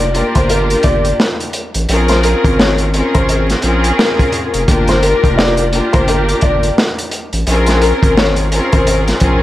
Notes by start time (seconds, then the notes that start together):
Already playing: F1 D5
0.13 A#3 D4 F4 G4 A#4, closed hi-hat
0.35 G1 C5, kick, closed hi-hat
0.49 A#4, closed hi-hat
0.70 closed hi-hat
0.83 G1 D5, kick, closed hi-hat
1.05 closed hi-hat
1.20 snare
1.40 closed hi-hat
1.53 closed hi-hat
1.74 A1, closed hi-hat
1.89 A#1 C4 C#4 F4 G#4 A#4, closed hi-hat
2.08 C5, snare, closed hi-hat
2.23 A#4, closed hi-hat
2.45 G#1, kick, closed hi-hat
2.58 C#5, snare
2.78 closed hi-hat
2.93 C4 C#4 F4 G#4 A#4, closed hi-hat
3.14 G#1 C5, kick, closed hi-hat
3.29 closed hi-hat
3.50 snare, closed hi-hat
3.62 A#1 C4 C#4 F4 G#4 A#4, closed hi-hat
3.84 closed hi-hat
3.98 A#4, snare
4.19 kick, closed hi-hat
4.32 closed hi-hat
4.54 F1, closed hi-hat
4.67 G1 A#3 D4 F4 G4 A#4, kick, closed hi-hat
4.88 C5, snare, closed hi-hat
5.03 A#4, closed hi-hat
5.24 F1, kick, closed hi-hat
5.38 D5, snare
5.57 closed hi-hat
5.72 A#3 D4 F4 G4 A#4, closed hi-hat
5.93 G1 C5, kick, closed hi-hat
6.08 A#4, closed hi-hat
6.29 closed hi-hat
6.41 G1 D5, kick, closed hi-hat
6.63 closed hi-hat
6.78 snare
6.98 closed hi-hat
7.11 closed hi-hat
7.33 A1, closed hi-hat
7.47 A#1 C4 C#4 F4 G#4 A#4, closed hi-hat
7.66 C5, snare, closed hi-hat
7.82 A#4, closed hi-hat
8.03 G#1, kick, closed hi-hat
8.17 C#5, snare
8.36 closed hi-hat
8.51 C4 C#4 F4 G#4 A#4, closed hi-hat
8.72 G#1 C5, kick, closed hi-hat
8.87 closed hi-hat
9.08 snare, closed hi-hat
9.20 A#1 C4 C#4 F4 G#4 A#4, kick, closed hi-hat